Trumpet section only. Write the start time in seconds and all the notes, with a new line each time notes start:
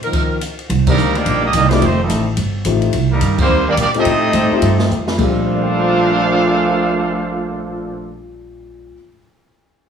0.88 G3 D4 D#4 A#4
1.16 A#3 D#4 G4 D5
1.44 A#3 D4 G4 D#5
1.55 A#3 D4 G4 D#5
1.67 C5 D5
1.71 A#3 D#4 G4
1.83 A3 D#4 G4 C5
2.01 G3 C4 D#4 A4
3.11 G3 D4 D#4 A#4
3.39 A#3 D#4 G4 C5
3.69 A#3 D#4 G4 D5
3.79 A#3 D#4 G4 D5
3.97 C4 G4 A4 D#5
5.19 D4 A4 C5 F5